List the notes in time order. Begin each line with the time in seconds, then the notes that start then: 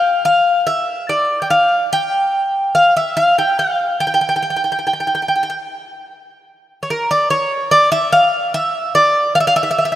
Already playing: F5
0.25 F5
0.67 E5
1.09 D5
1.42 G5
1.50 F5
1.93 G5
2.75 F5
2.97 E5
3.17 F5
3.38 G5
3.59 F5
4.00 G5
4.07 G5
4.14 G5
4.21 G5
4.29 G5
4.36 G5
4.42 G5
4.50 G5
4.56 G5
4.64 G5
4.72 G5
4.79 G5
4.87 G5
4.93 G5
5.00 G5
5.07 G5
5.15 G5
5.22 G5
5.28 G5
5.36 G5
5.43 G5
5.50 G5
6.83 C#5
6.90 A#4
7.11 D5
7.30 C#5
7.71 D5
7.92 E5
8.12 F5
8.54 E5
8.95 D5
9.35 F5
9.40 E5
9.47 F5
9.56 E5
9.63 E5
9.71 E5
9.78 E5
9.85 E5
9.92 E5